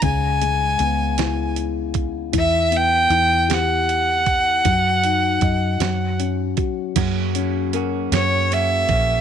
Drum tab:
CC |------|------|------|x-----|
HH |xxxxxx|xxxxxx|xxxxxx|xxxxxx|
SD |---o--|---o--|---o--|---o--|
BD |o----o|o----o|o-o--o|o----o|